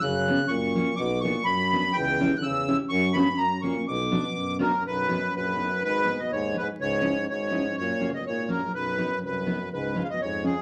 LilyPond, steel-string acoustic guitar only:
\new Staff \with { instrumentName = "Steel-string acoustic guitar" } { \time 2/4 \key b \minor \tempo 4 = 124 r8 <b cis' fis'>8 r8 <ais cis' fis'>8 | r8 <b d' fis'>8 r8 <b d' fis'>8 | r8 <cis' e' g'>8 r8 <cis' e' g'>8 | r8 <b cis' fis'>8 r8 <ais cis' fis'>8 |
r8 <b d' fis'>8 r8 <b d' fis'>8 | \key b \major r8 <b dis' fis'>8 r8 <b dis' fis'>8 | r8 <b dis' gis'>8 r8 <b dis' gis'>8 | r8 <cis' e' gis'>8 r8 <cis' e' gis'>8 |
r8 <ais cis' fis'>8 r8 <ais cis' fis'>8 | r8 <b dis' fis'>8 r8 <b dis' fis'>8 | r8 <gis cis' eis'>8 r8 <gis cis' eis'>8 | }